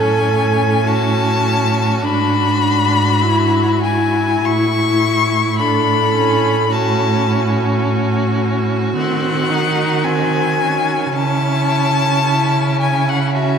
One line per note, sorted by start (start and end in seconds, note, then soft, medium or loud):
0.00 2.05 A2 medium
0.00 2.04 C#4 medium
0.00 0.86 A4 medium
0.00 0.88 G#5 loud
0.86 4.46 F#4 medium
0.86 2.05 A5 loud
2.03 4.44 G#2 medium
2.03 2.61 D4 medium
2.03 3.82 B5 loud
2.62 3.23 D4 medium
3.21 3.82 E4 medium
3.83 5.61 E4 medium
3.83 4.47 G#5 medium
4.44 8.97 A2 medium
4.44 5.60 E4 medium
4.44 5.58 C#6 loud
5.59 6.15 D4 medium
5.59 6.71 A4 medium
5.59 6.74 B5 loud
6.15 6.71 C#4 medium
6.72 8.91 C#4 medium
6.72 11.14 F#4 medium
6.72 7.85 A5 medium
8.95 11.12 D#3 medium
8.95 9.52 C4 medium
8.95 10.06 F#5 loud
9.50 10.06 D#4 medium
10.04 10.60 C4 medium
10.04 11.14 G#5 loud
10.58 13.34 C#4 medium
11.12 13.58 C#3 medium
11.12 12.24 E4 medium
11.12 12.80 A5 loud
12.25 13.36 E4 medium
12.80 13.11 G#5 medium
13.09 13.35 F#5 medium
13.34 13.58 C#4 medium
13.34 13.58 F#4 medium
13.34 13.58 E5 medium